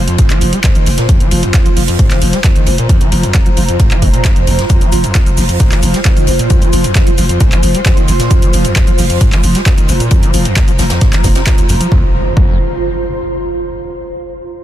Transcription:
Already playing: F4 C5 C6, downlifter
0.08 F2, closed hi-hat
0.18 F1 G#2, kick, closed hi-hat, ride
0.30 F1 F3, clap, closed hi-hat
0.41 F1 F3, open hi-hat, ride
0.53 G#3, closed hi-hat
0.64 F2, kick, snare, clap, closed hi-hat, ride
0.75 F1 D#3, closed hi-hat
0.86 F1 F3, open hi-hat, ride
0.97 A#2, snare, closed hi-hat
1.09 F2, kick, closed hi-hat, ride
1.20 F1 F3, closed hi-hat
1.31 F1 F3, open hi-hat, ride
1.43 F2, closed hi-hat, ride
1.54 F2, kick, snare, clap, closed hi-hat, ride
1.65 F1 F3 A#5, closed hi-hat, ride
1.76 F1 F3, open hi-hat
1.88 F2, closed hi-hat
1.99 F1 G#2, kick, closed hi-hat, ride
2.10 F1 F3, snare, clap, closed hi-hat
2.21 F1 F3, open hi-hat, ride
2.33 G#3, snare, closed hi-hat
2.43 F2, kick, snare, clap, closed hi-hat, ride
2.55 F1 D#3, closed hi-hat, ride
2.66 F1 F3, open hi-hat, ride
2.78 A#2, closed hi-hat
2.89 F2, kick, closed hi-hat, ride
3.01 F1 F3, closed hi-hat
3.12 F1 F3, open hi-hat, ride
3.23 F2, closed hi-hat, ride
3.34 F2, kick, snare, clap, closed hi-hat, ride
3.46 F1 F3, closed hi-hat
3.57 F1 F3, open hi-hat, ride
3.68 F2, closed hi-hat
3.80 F1, kick, closed hi-hat, ride
3.91 F1 F3, clap, closed hi-hat
4.02 F1 D#3, kick, open hi-hat, ride
4.14 A#2, closed hi-hat
4.24 F2, kick, snare, clap, closed hi-hat, ride
4.36 F1 F2, closed hi-hat
4.47 F1 F2, open hi-hat, ride
4.59 G2, snare, closed hi-hat
4.70 F2, kick, closed hi-hat, ride, shaker
4.81 F1 F3, closed hi-hat, shaker
4.92 F1 F3, open hi-hat, ride, shaker
5.04 F2, closed hi-hat, ride, shaker
5.15 kick, snare, clap, closed hi-hat, ride, shaker
5.26 F1 F3 C6, closed hi-hat, ride, shaker
5.37 F1 F3, open hi-hat, shaker
5.49 F2, closed hi-hat, shaker
5.60 F1 G#2, kick, closed hi-hat, ride, shaker
5.71 F1 F3, snare, clap, closed hi-hat, shaker
5.82 F1 F3, open hi-hat, ride, shaker
5.94 G#3, snare, closed hi-hat, shaker
6.04 F2, kick, snare, clap, closed hi-hat, ride, shaker
6.16 F1 D#3, closed hi-hat, ride, shaker
6.27 F1 F3, open hi-hat, ride, shaker
6.39 A#2, closed hi-hat, shaker
6.50 F2, kick, closed hi-hat, ride, shaker
6.62 F1 F3, closed hi-hat, shaker
6.73 F1 F3, open hi-hat, ride, shaker
6.84 F2, closed hi-hat, ride, shaker
6.95 F2, kick, snare, clap, closed hi-hat, ride, shaker
7.07 F1 F3, closed hi-hat, shaker
7.18 F1 F3, open hi-hat, ride, shaker
7.29 F2, closed hi-hat, shaker
7.40 F1 G#2, kick, closed hi-hat, ride, shaker
7.52 F1 F3, clap, closed hi-hat, shaker
7.63 F1 F3, open hi-hat, ride, shaker
7.74 G#3, closed hi-hat, shaker
7.85 F2, kick, snare, clap, closed hi-hat, ride, shaker
7.97 F1 D#3, closed hi-hat, shaker
8.08 F1 F3, open hi-hat, ride, shaker
8.19 A#2, snare, closed hi-hat, shaker
8.31 F2, kick, closed hi-hat, ride, shaker
8.42 F1 F3, closed hi-hat, shaker
8.53 F1 F3, open hi-hat, ride, shaker
8.64 F2, closed hi-hat, ride, shaker
8.76 kick, snare, clap, closed hi-hat, ride, shaker
8.87 F1 F3 A#5, closed hi-hat, ride, shaker
8.98 F1 F3, open hi-hat, shaker
9.10 F2, closed hi-hat, shaker
9.21 F1, kick, closed hi-hat, ride, shaker
9.32 F1 F3, snare, clap, closed hi-hat, shaker
9.43 F1 F3, open hi-hat, ride, shaker
9.55 G#3, snare, closed hi-hat, shaker
9.66 F2, kick, snare, clap, closed hi-hat, ride, shaker
9.78 F1 D#3, closed hi-hat, ride, shaker
9.89 F1 F3, open hi-hat, ride, shaker
10.00 A#2, closed hi-hat, shaker
10.11 F2, kick, closed hi-hat, ride, shaker
10.23 F1 F3, closed hi-hat, shaker
10.34 F1 F3, open hi-hat, ride, shaker
10.45 F2, closed hi-hat, ride, shaker
10.56 kick, snare, clap, closed hi-hat, shaker
10.68 F1 F3, closed hi-hat, shaker
10.79 F1 F3, snare, open hi-hat, ride, shaker
10.90 F2, snare, closed hi-hat, ride, shaker
11.01 F1, kick, snare, closed hi-hat, ride, shaker
11.13 F1 F3, snare, clap, closed hi-hat, ride, shaker
11.24 F1 A#2, kick, snare, open hi-hat, ride, shaker
11.35 C3, snare, closed hi-hat, ride, shaker
11.47 D#2, kick, snare, clap, closed hi-hat, ride, shaker
11.58 F1 D#2, closed hi-hat, shaker
11.69 F1 F2, open hi-hat, ride, shaker
11.81 F3, closed hi-hat, shaker
11.92 F1 F2 F4, kick, impact
11.99 C5
12.06 C6
12.37 F1 F2, kick

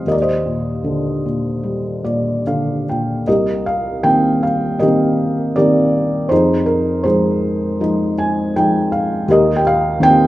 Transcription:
0.07 D#2 A#4 D#5
0.11 D5
0.22 C5 D#5
0.46 A#2
0.84 D3
1.26 A#2
1.63 G3
2.04 A#2 D5
2.47 D3 F5
2.89 A#2 G5
3.27 C2 G4 A#4 D#5
3.66 F5
4.03 D#3 A#3 C4 G5
4.43 F5
4.79 D#3 A#3 C4 G4 A#4 D#5
5.56 D#3 A#3 C4 G4 A#4 D5
6.29 F2 D#4 G#4 C5
6.66 A#4
7.04 F3 G#3 D#4 G#4 C5
7.80 F3 G#3 D#4
8.18 G#5
8.56 F3 G#3 D#4 G5
8.92 F5
9.28 D#2 G4 A#4 D#5
9.56 G5
9.67 F5
10.00 D#3 A#3 C4 G5

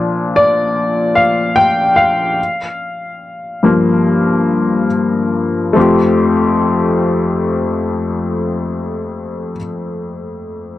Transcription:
Already playing: A#2 F3 D4
0.36 D5
1.15 F5
1.56 G5
1.96 F5
3.63 G2 F3 A#3
5.73 F2 A3 C4
5.78 F4 G4

